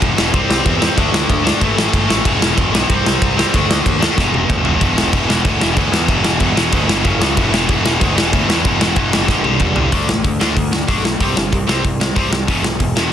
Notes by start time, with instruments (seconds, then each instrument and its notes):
Already playing: distorted electric guitar E2 B2 E3
0.02 picked electric bass E1, kick, ride
0.17 picked electric bass E1, distorted electric guitar E2 B2 E3, snare
0.32 picked electric bass C2, distorted electric guitar C3 G3 C4, kick, ride
0.49 picked electric bass C2, snare
0.65 picked electric bass E2, kick, ride
0.80 distorted electric guitar C3 G3 C4, snare
0.96 picked electric bass D2, distorted electric guitar D3 A3 D4, kick, ride
1.12 picked electric bass D2, snare
1.30 picked electric bass D2, kick, ride
1.43 distorted electric guitar D3 A3 D4, snare
1.59 picked electric bass A1, distorted electric guitar A2 E3 A3, kick, ride
1.77 picked electric bass A1, snare
1.93 picked electric bass G1, kick, ride
2.07 picked electric bass A1, distorted electric guitar A2 E3 A3, snare
2.23 picked electric bass E1, distorted electric guitar E2 B2 E3, kick, ride
2.41 picked electric bass E1, snare
2.58 picked electric bass E1, kick, ride
2.72 picked electric bass B1, distorted electric guitar E2 B2 E3, snare
2.88 picked electric bass C2, distorted electric guitar C3 G3 C4, kick, ride
3.06 picked electric bass C2, snare
3.22 picked electric bass C2, kick, ride
3.36 distorted electric guitar C3 G3 C4, snare
3.52 picked electric bass D2, distorted electric guitar D3 A3 D4, kick, ride
3.69 picked electric bass D2, snare
3.86 picked electric bass D#2, kick, ride
4.00 distorted electric guitar D3 A3 D4, snare
4.16 picked electric bass E1, distorted electric guitar E2 B2 E3, kick, snare
4.33 picked electric bass E1, high tom
4.50 picked electric bass D2, kick, mid tom
4.64 picked electric bass E1, distorted electric guitar E2 B2 E3, floor tom
4.80 picked electric bass E1, distorted electric guitar E2 B2 E3, kick, crash
4.95 distorted electric guitar E2 B2 E3, snare
5.12 picked electric bass E1, distorted electric guitar E2 B2 E3, kick, crash
5.27 picked electric bass E1, distorted electric guitar E2 B2 E3, snare
5.44 picked electric bass D2, distorted electric guitar E2 B2 E3, kick, crash
5.59 picked electric bass E1, distorted electric guitar E2 B2 E3, snare
5.76 picked electric bass D2, distorted electric guitar E2 B2 E3, kick, crash
5.92 picked electric bass E2, distorted electric guitar E2 B2 E3, snare
6.08 picked electric bass E1, distorted electric guitar E2 B2 E3, kick, crash
6.23 picked electric bass E1, distorted electric guitar E2 B2 E3, snare
6.39 picked electric bass E1, distorted electric guitar E2 B2 E3, kick, crash
6.55 picked electric bass E1, distorted electric guitar E2 B2 E3, snare
6.71 picked electric bass D2, distorted electric guitar E2 B2 E3, kick, crash
6.88 picked electric bass G1, distorted electric guitar E2 B2 E3, snare
7.04 picked electric bass F#1, distorted electric guitar F#2 C#3 F#3, kick, crash
7.20 picked electric bass C#2, distorted electric guitar F#2 C#3 F#3, snare
7.36 picked electric bass E1, distorted electric guitar E2 B2 E3, kick, crash
7.52 distorted electric guitar E2 B2 E3, snare
7.68 picked electric bass E1, distorted electric guitar E2 B2 E3, kick, crash
7.84 picked electric bass E1, distorted electric guitar E2 B2 E3, snare
8.00 picked electric bass D2, distorted electric guitar E2 B2 E3, kick, crash
8.15 picked electric bass E1, distorted electric guitar E2 B2 E3, snare
8.32 picked electric bass D2, distorted electric guitar E2 B2 E3, kick, crash
8.48 picked electric bass E2, distorted electric guitar E2 B2 E3, snare
8.64 picked electric bass E1, distorted electric guitar E2 B2 E3, kick, crash
8.80 picked electric bass E1, distorted electric guitar E2 B2 E3, snare
8.96 picked electric bass E1, distorted electric guitar E2 B2 E3, kick, crash
9.12 picked electric bass F#1, distorted electric guitar E2 B2 E3, snare
9.28 picked electric bass G1, distorted electric guitar G2 D3 G3, kick, snare
9.44 picked electric bass C2, distorted electric guitar G2 D3 G3, high tom
9.60 picked electric bass G1, distorted electric guitar G2 D3 G3, kick, mid tom
9.76 picked electric bass C2, distorted electric guitar G2 D3 G3, floor tom
9.91 picked electric bass D2, distorted electric guitar D3 A3 D4, kick, open hi-hat
10.08 picked electric bass A1, distorted electric guitar D3 A3, snare
10.24 picked electric bass D2, distorted electric guitar D3 A3, kick, open hi-hat
10.40 picked electric bass D2, distorted electric guitar D3 A3 D4, snare
10.56 picked electric bass D2, distorted electric guitar D3 A3, kick, open hi-hat
10.72 distorted electric guitar D3 A3, snare
10.88 picked electric bass B1, distorted electric guitar D3 A3 D4, kick, open hi-hat
11.05 distorted electric guitar D3 A3, snare
11.20 picked electric bass C2, distorted electric guitar C3 G3 C4, kick, open hi-hat
11.36 picked electric bass G1, distorted electric guitar C3 G3, snare
11.52 picked electric bass C2, distorted electric guitar C3 G3, kick, open hi-hat
11.67 picked electric bass C2, distorted electric guitar C3 G3 C4, snare
11.84 picked electric bass C2, distorted electric guitar C3 G3, kick, open hi-hat
12.00 distorted electric guitar C3 G3, snare
12.15 picked electric bass C2, distorted electric guitar C3 G3 C4, kick, open hi-hat
12.32 distorted electric guitar C3 G3, snare
12.47 picked electric bass E1, distorted electric guitar E2 B2 E3, kick, open hi-hat
12.63 picked electric bass B1, distorted electric guitar E2 B2, snare
12.79 picked electric bass E1, distorted electric guitar E2 B2, kick, open hi-hat
12.96 picked electric bass E1, distorted electric guitar E2 B2 E3, snare